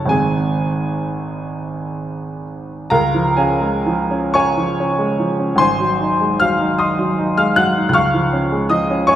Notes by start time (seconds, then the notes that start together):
Already playing: F#1 F#3 A3 C#4 A4 C#5 A5 C#6
0.06 G#1 D#3 G#3 C4 G#5
0.11 G#4
2.90 C#2 A#4 F5 A#5
3.14 F3
3.37 C#4 G#4 F5 G#5
3.61 G#3
3.86 F3
4.11 C#4
4.34 C#5 G#5 C#6
4.58 F3
4.80 C#4
4.99 G#3
5.19 F3
5.39 C#4
5.56 G#1 C5 G#5 C6
5.80 F#3
6.01 D#4
6.21 G#3
6.40 F#3 F5 F6
6.60 D#4
6.78 D#5 C6 D#6
6.99 F#3
7.19 D#4
7.38 G#3 F5 F6
7.56 F#3 F#5 F#6
7.77 D#4
7.89 C#2 F#6
7.93 F5 C#6 F6
8.14 F3
8.33 C#4
8.52 G#3
8.69 F3 D#5 D#6
8.90 C#4
9.07 C#5 G#5 C#6